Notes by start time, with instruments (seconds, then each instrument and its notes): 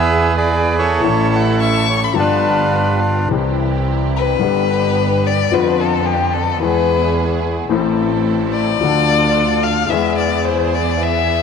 Already playing: grand piano E2 E3 G#3 B3 G#4, double bass E2, string section B3 E4 G#4, bandoneon G#4 B4 E5
0.37 bandoneon G#4 B4 D5
0.79 bandoneon E4 A4 C#5
1.01 grand piano A1 A2 E3 A3 C#4, string section C#4 A4
1.05 double bass A1, string section E4, grand piano A4
1.35 bandoneon F#5
1.61 bandoneon E5, violin C#6
1.90 bandoneon C#5
2.04 violin B5
2.14 grand piano G1 G2 F3 B3 D4 G4, double bass G1, string section B3 F4 G4, violin A5
2.18 bandoneon D4 F4 B4
3.29 grand piano C2 C3 E3 G3 C4, double bass C2, string section C4 E4 G4
3.33 grand piano G4
4.17 violin B4
4.39 grand piano G1 G2 D3 G3 B3, double bass G1, string section B3
4.43 string section D4 G4, grand piano G4
5.27 violin D5
5.52 double bass F2, grand piano F2 D3 F3 B3 F4, string section B3 D4 F4, violin B4
5.81 violin A4
6.06 violin G4
6.34 violin A4
6.60 double bass E2, grand piano E2 E3 G#3 B3 G#4, string section B3 E4 G#4, violin B4
7.69 double bass A1, grand piano A1 A2 E3 A3 C4 A4, string section C4 E4 A4
8.53 violin D5
8.81 double bass D2, grand piano D2 D3 F3 A3 D4, string section D4 F4 A4
8.85 grand piano A4
9.63 violin F5
9.90 grand piano E2 E3 G#3 B3 G#4, double bass E2, string section B3 E4 G#4, violin E5
10.18 violin D5
10.45 violin C5
10.74 violin D5
11.03 violin E5